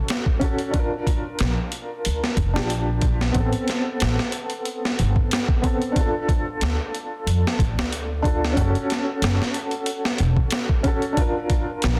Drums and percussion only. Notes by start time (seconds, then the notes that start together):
0.08 snare, closed hi-hat
0.26 kick
0.41 kick, closed hi-hat
0.59 closed hi-hat
0.74 kick, closed hi-hat
1.07 kick, closed hi-hat
1.39 snare, closed hi-hat
1.72 closed hi-hat
2.05 closed hi-hat
2.24 snare
2.37 kick, closed hi-hat
2.56 snare
2.70 closed hi-hat
3.02 kick, closed hi-hat
3.21 snare
3.34 kick, closed hi-hat
3.53 closed hi-hat
3.68 snare, closed hi-hat
4.00 snare, closed hi-hat
4.19 snare
4.32 closed hi-hat
4.50 closed hi-hat
4.65 closed hi-hat
4.85 snare
4.99 closed hi-hat
5.16 kick
5.31 snare, closed hi-hat
5.48 kick
5.64 kick, closed hi-hat
5.82 closed hi-hat
5.96 kick, closed hi-hat
6.29 kick, closed hi-hat
6.61 snare, closed hi-hat
6.95 closed hi-hat
7.27 closed hi-hat
7.47 snare
7.59 kick, closed hi-hat
7.79 snare
7.93 closed hi-hat
8.24 kick, closed hi-hat
8.44 snare
8.57 kick, closed hi-hat
8.75 closed hi-hat
8.90 snare, closed hi-hat
9.22 snare, closed hi-hat
9.42 snare
9.54 closed hi-hat
9.71 closed hi-hat
9.86 closed hi-hat
10.05 snare
10.18 closed hi-hat
10.37 kick
10.51 snare, closed hi-hat
10.69 kick
10.84 kick, closed hi-hat
11.02 closed hi-hat
11.17 kick, closed hi-hat
11.50 kick, closed hi-hat
11.82 snare, closed hi-hat